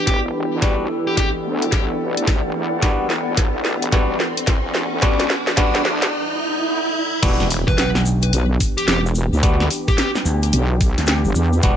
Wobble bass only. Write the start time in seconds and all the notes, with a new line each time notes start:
0.07 E1
0.52 D2
1.45 D2
1.73 B1
2.18 D2
2.45 G1
2.55 E2
2.83 E1
3.00 E1
3.28 E1
3.38 B1
3.92 B1
4.48 E1
4.92 D2
5.85 D2
7.23 E1
7.40 E1
8.33 B1
8.88 E1
9.33 D2
10.53 B1
11.25 G1
11.35 E2
11.63 E1